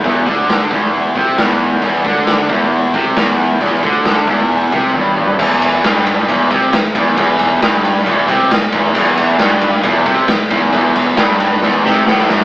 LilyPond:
<<
  \new Staff \with { instrumentName = "Distorted electric guitar" } { \clef bass \time 4/4 \key e \minor \tempo 4 = 135 e,8 d4 e,4 c8 e,4 | e,8 d4 e,4 c8 e,4 | e,8 d4 e,4 c8 g,4 | r1 |
r1 | e,4 g,4 e,8 c8 e,8 e,8 | e,4 g,4 e,8 c8 a,8 fis,8 | }
  \new Staff \with { instrumentName = "Overdriven electric guitar" } { \clef bass \time 4/4 \key e \minor e,8 d4 e,4 c8 e,4 | e,8 d4 e,4 c8 e,4 | e,8 d4 e,4 c8 g,4 | e,4 g,4 e,8 c8 e,8 e,8 |
e,4 g,4 e,8 c8 e,8 e,8 | e,4 g,4 e,8 c8 e,8 e,8 | e,4 g,4 e,8 c8 a,8 fis,8 | }
  \new Staff \with { instrumentName = "Overdriven electric guitar" } { \clef bass \time 4/4 \key e \minor e,8 d4 e,4 c8 e,4 | e,8 d4 e,4 c8 e,4 | e,8 d4 e,4 c8 g,4 | e,4 g,4 e,8 c8 e,8 e,8 |
e,4 g,4 e,8 c8 e,8 e,8 | e,4 g,4 e,8 c8 e,8 e,8 | e,4 g,4 e,8 c8 a,8 fis,8 | }
  \new Staff \with { instrumentName = "Fingered electric bass" } { \clef bass \time 4/4 \key e \minor e,,8 d,4 e,,4 c,8 e,,4 | e,,8 d,4 e,,4 c,8 e,,4 | e,,8 d,4 e,,4 c,8 g,,4 | e,,4 g,,4 e,,8 c,8 e,,8 e,,8 |
e,,4 g,,4 e,,8 c,8 e,,8 e,,8 | e,,4 g,,4 e,,8 c,8 e,,8 e,,8 | e,,4 g,,4 e,,8 c,8 a,,8 fis,,8 | }
  \new DrumStaff \with { instrumentName = "Drums" } \drummode { \time 4/4 <hho bd>8 <hho bd>8 <hho sn>8 <hho bd>8 hho8 <hho bd>8 <hho sn>8 hho8 | <hho bd>8 <hho bd>8 <hho sn>8 <hho bd>8 hho8 <hho bd>8 <hho sn>8 hho8 | <hho bd>8 <hho bd>8 <hho sn>8 <hho bd>8 hho8 <hho bd>8 tommh8 toml16 tomfh16 | <cymc bd>8 cymr8 <cymr sn>8 cymr8 <bd cymr>8 <bd cymr>8 <cymr sn>8 <bd cymr>16 sn16 |
<bd cymr>8 cymr8 <cymr sn>8 cymr16 sn16 <bd cymr>8 <bd cymr>8 <cymr sn>8 <bd cymr>16 sn16 | <cymc bd>8 cymr8 <cymr sn>8 cymr8 <bd cymr>8 <bd cymr>8 <cymr sn>8 <bd cymr>8 | <bd cymr>8 cymr8 <cymr sn>8 cymr8 sn8 sn8 sn16 sn16 sn16 sn16 | }
>>